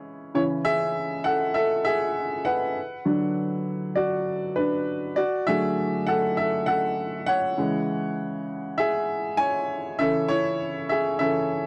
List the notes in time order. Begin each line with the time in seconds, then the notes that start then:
Already playing: E4 C#5
0.34 C#3 E3 C#4 E4 C#5
0.65 G#4 E5
1.24 A4 F#5
1.54 A4 E5
1.85 G#4 E5
2.45 B4 F#5
3.05 D3 F#3 D4
3.96 F#4 D5
4.56 D4 B4
5.16 F#4 D5
5.47 D3 F#3 A3 G#4 E5
6.07 A4 F#5
6.37 A4 E5
6.66 A4 F#5
7.26 C#5 F#5
7.57 C#3 E3 G#3
8.78 G#4 E5
9.37 C#5 G#5
9.99 C#3 E3 C#4 A4 E5
10.28 E4 C#5
10.89 G#4 E5
11.19 C#3 E3 C#4 A4 E5